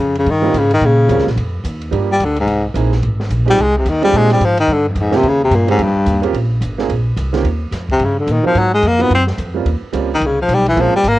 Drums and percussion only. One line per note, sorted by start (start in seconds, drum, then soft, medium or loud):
0.15 ride soft
0.26 kick soft
0.26 ride medium
0.53 kick soft
0.53 hi-hat pedal medium
0.53 ride medium
0.71 ride medium
0.81 kick soft
0.81 ride medium
1.09 kick soft
1.09 hi-hat pedal medium
1.09 ride medium
1.18 snare soft
1.27 snare soft
1.37 kick soft
1.37 ride medium
1.64 kick soft
1.64 hi-hat pedal medium
1.64 ride medium
1.81 ride soft
1.92 kick soft
1.92 ride medium
2.20 kick soft
2.20 hi-hat pedal medium
2.20 ride medium
2.36 ride medium
2.47 kick soft
2.47 ride medium
2.75 kick soft
2.75 hi-hat pedal medium
2.75 ride medium
2.92 snare soft
3.02 kick soft
3.02 ride medium
3.20 snare medium
3.30 kick soft
3.30 hi-hat pedal medium
3.30 ride medium
3.48 ride soft
3.58 kick soft
3.58 ride medium
3.85 kick soft
3.85 hi-hat pedal medium
3.85 ride medium
4.03 ride soft
4.13 kick soft
4.13 ride medium
4.30 snare soft
4.30 ride medium
4.40 kick soft
4.40 hi-hat pedal medium
4.40 ride medium
4.58 ride medium
4.68 kick soft
4.96 kick soft
4.96 hi-hat pedal medium
4.96 ride medium
5.12 snare medium
5.12 ride soft
5.23 kick soft
5.23 ride medium
5.51 kick soft
5.51 hi-hat pedal medium
5.51 ride medium
5.68 ride medium
5.79 kick soft
5.79 ride medium
6.06 kick soft
6.06 hi-hat pedal medium
6.06 ride medium
6.23 ride medium
6.34 kick soft
6.34 ride medium
6.61 kick soft
6.61 hi-hat pedal medium
6.61 ride medium
6.79 snare soft
6.89 kick soft
6.89 ride medium
7.17 kick soft
7.17 hi-hat pedal medium
7.17 ride medium
7.34 snare soft
7.34 ride soft
7.44 kick soft
7.44 ride medium
7.72 kick soft
7.72 snare soft
7.72 hi-hat pedal medium
7.72 ride medium
7.89 kick medium
7.89 ride soft
8.00 ride medium
8.27 kick soft
8.27 hi-hat pedal medium
8.27 ride medium
8.55 kick soft
8.55 ride medium
8.82 kick soft
8.82 hi-hat pedal medium
8.82 ride medium
9.00 ride soft
9.10 kick soft
9.10 ride medium
9.27 snare medium
9.38 kick soft
9.38 hi-hat pedal medium
9.38 ride medium
9.65 kick soft
9.65 ride medium
9.93 kick soft
9.93 hi-hat pedal medium
9.93 ride medium
10.21 kick soft
10.21 ride medium
10.49 kick soft
10.49 hi-hat pedal medium
10.49 ride medium
10.66 ride soft
10.76 kick soft
10.76 ride medium
11.04 kick soft
11.04 hi-hat pedal medium
11.04 ride medium